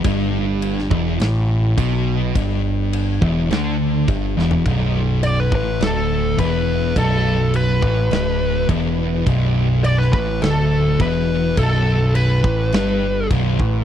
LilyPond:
<<
  \new Staff \with { instrumentName = "Lead electric guitar" } { \time 4/4 \key b \minor \tempo 4 = 104 r1 | r1 | r4 d''16 b'16 b'8 a'4 b'4 | a'4 b'2 r4 |
r4 d''16 b'16 b'8 a'4 b'4 | a'4 b'2 r4 | }
  \new Staff \with { instrumentName = "Distorted electric guitar" } { \clef bass \time 4/4 \key b \minor g,4. e,8 a,4 b,4 | g,4. e,8 d4 g,8 e,8 | b,,4. a,8 d,4 e,4 | b,,4. a,8 d,4 e,4 |
b,,4. a,8 d,4 e,4 | b,,4. a,8 g,4 b,,8 a,8 | }
  \new Staff \with { instrumentName = "Picked electric bass" } { \clef bass \time 4/4 \key b \minor g,,4. e,,8 a,,4 b,,4 | g,,4. e,,8 d,4 g,,8 e,,8 | b,,,4. a,,8 d,,4 e,,4 | b,,,4. a,,8 d,,4 e,,4 |
b,,,4. a,,8 d,,4 e,,4 | b,,,4. a,,8 g,,4 b,,,8 a,,8 | }
  \new DrumStaff \with { instrumentName = "Drums" } \drummode { \time 4/4 <cymc bd>4 cymc16 sn16 bd8 <cymc sn>4 <cymc bd>4 | <cymc bd>4 cymc8 bd8 <cymc sn>4 <cymc bd>8 sn16 tomfh16 | <cymc bd>4 cymc8 bd8 <cymc sn>4 <cymc bd>4 | <cymc bd>4 cymc8 bd8 <cymc sn>4 <cymc bd>4 |
<cymc bd>4 cymc16 sn16 bd8 <cymc sn>4 <cymc bd>4 | <cymc bd>4 cymc8 bd8 <cymc sn>4 <cymc bd>8 bd8 | }
>>